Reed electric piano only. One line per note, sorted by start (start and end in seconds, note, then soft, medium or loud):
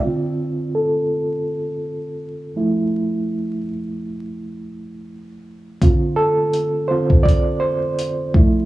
0.05 2.53 D3 soft
0.05 2.53 C4 soft
0.05 2.54 F4 medium
0.75 2.52 A4 medium
2.56 3.61 F3 soft
2.56 3.61 A3 soft
2.56 3.61 E4 medium
5.82 6.31 D3 medium
5.82 6.31 C4 soft
5.82 6.32 F4 medium
6.16 6.85 A4 medium
6.88 7.23 D3 soft
6.88 7.23 C4 soft
6.88 7.23 F4 medium
6.88 7.22 C5 medium
7.23 7.62 D5 medium
7.60 8.29 C5 medium
8.34 8.65 F3 soft
8.34 8.65 A3 soft
8.34 8.65 E4 medium